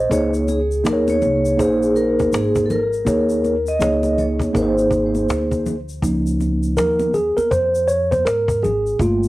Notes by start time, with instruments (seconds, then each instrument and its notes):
Already playing: tine electric piano C5 D#5
0.10 upright bass C#2, tine electric piano A#3 D#4 G#4 C#5, vibraphone C#5, cajon bass, shaker
0.34 shaker
0.48 vibraphone G#4, cajon slap, high conga, shaker
0.71 shaker
0.84 upright bass D#2, tine electric piano A#3 D#4 G#4 A#4, vibraphone A#4, cajon slap, low conga, shaker
0.93 tine electric piano C#5
1.08 vibraphone C#5, high conga, shaker
1.22 upright bass C2, cajon slap, high conga, low conga, shaker
1.45 shaker
1.57 upright bass A#1, tine electric piano A#3 D#4 G#4 C5, vibraphone G#4, cajon bass, cajon slap, shaker
1.83 shaker
1.95 vibraphone A#4, cajon slap, shaker
2.19 cajon bass, high conga, shaker
2.33 upright bass G#1, vibraphone G#4, cajon slap, shaker
2.55 cajon bass, shaker
2.66 vibraphone A4
2.70 vibraphone A#4, low conga, shaker
2.93 shaker
3.05 upright bass D#2, tine electric piano A#3 D#4 G#4 C#5, cajon bass, shaker
3.29 shaker
3.44 cajon slap, high conga, shaker
3.67 vibraphone D#5, shaker
3.79 upright bass C#2, tine electric piano A#3 D#4 G#4 C#5, cajon slap, low conga, shaker
4.03 high conga, shaker
4.17 vibraphone C#5, cajon slap, high conga, low conga, shaker
4.39 muted upright bass stroke, cajon bass, high conga, shaker
4.53 upright bass G#1, tine electric piano A#3 D#4 G#4 A#4, vibraphone C5, cajon bass, cajon slap, shaker
4.62 tine electric piano C5
4.78 shaker
4.91 cajon bass, shaker
5.15 high conga, shaker
5.29 upright bass D2, cajon slap, shaker
5.51 cajon bass, shaker
5.66 cajon slap, low conga, shaker
5.89 shaker
6.02 upright bass C#2, tine electric piano F3 A#3 D#4, cajon bass, shaker
6.27 shaker
6.40 cajon slap, high conga, shaker
6.63 shaker
6.77 upright bass D#2, tine electric piano A#4, cajon slap, low conga, shaker
7.00 high conga, shaker
7.14 tine electric piano G#4, cajon slap, low conga, shaker
7.37 tine electric piano A#4, muted upright bass stroke, high conga, shaker
7.51 upright bass F2, tine electric piano C5, cajon bass, cajon slap, shaker
7.75 shaker
7.88 tine electric piano C#5, cajon slap, shaker
8.11 tine electric piano C5, cajon bass, high conga, shaker
8.25 upright bass G#2, tine electric piano A#4, cajon slap, shaker
8.48 cajon bass, shaker
8.62 upright bass G#1, tine electric piano G#4, cajon slap, low conga, shaker
8.86 shaker
8.99 upright bass G1, tine electric piano A3 A#3 F4, cajon bass, shaker
9.23 shaker